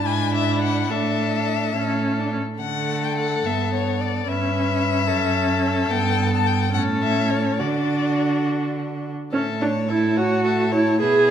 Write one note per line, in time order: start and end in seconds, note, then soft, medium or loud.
0.05 0.90 G#2 soft
0.05 0.89 D4 soft
0.05 0.92 E4 medium
0.05 0.34 G#5 medium
0.34 0.61 E5 medium
0.62 0.93 F#5 medium
0.90 1.74 A2 soft
0.90 1.74 D4 soft
0.90 1.75 A4 soft
0.90 2.32 E5 medium
1.76 2.39 A2 soft
1.76 2.21 C#4 soft
1.76 2.39 A4 soft
2.19 2.32 D4 soft
2.33 2.41 C#4 soft
2.60 3.41 D3 soft
2.60 3.47 A3 soft
2.60 4.24 A4 soft
2.60 3.05 F#5 medium
3.04 3.17 G5 medium
3.18 3.47 F#5 medium
3.45 4.26 G2 soft
3.45 4.27 B3 soft
3.45 3.73 E5 soft
3.73 4.02 C#5 medium
4.00 4.29 D5 soft
4.28 5.10 G2 soft
4.28 5.06 C#4 soft
4.28 5.09 B4 soft
4.28 5.92 E5 medium
5.08 5.90 F#2 soft
5.08 5.92 C#4 soft
5.08 6.72 A4 medium
5.91 6.75 G2 medium
5.91 6.73 B3 soft
5.91 6.32 G5 medium
6.33 6.48 A5 medium
6.46 6.73 G5 medium
6.73 7.61 A2 soft
6.73 7.61 C#4 soft
6.73 7.60 A4 soft
6.73 6.82 F#5 medium
7.03 7.32 E5 medium
7.30 7.61 C#5 medium
7.59 9.12 D3 soft
7.59 9.12 D4 soft
7.59 9.12 F#4 soft
7.59 8.46 D5 soft
9.32 11.02 A2 soft
9.32 9.41 C#4 medium
9.32 9.63 A4 soft
9.32 9.63 E5 soft
9.61 9.69 D4 medium
9.61 9.91 C#5 soft
9.61 9.90 A5 soft
9.88 10.19 E4 medium
9.88 10.18 A4 soft
9.88 10.18 E5 soft
10.16 10.72 F#4 medium
10.16 10.44 C#5 soft
10.16 10.45 A5 soft
10.44 10.73 A4 soft
10.44 10.74 E5 soft
10.72 11.00 E4 medium
10.72 11.00 C#5 soft
10.72 11.00 A5 soft
11.00 11.30 B2 soft
11.00 11.30 G#4 medium
11.00 11.30 B4 soft
11.00 11.30 E5 soft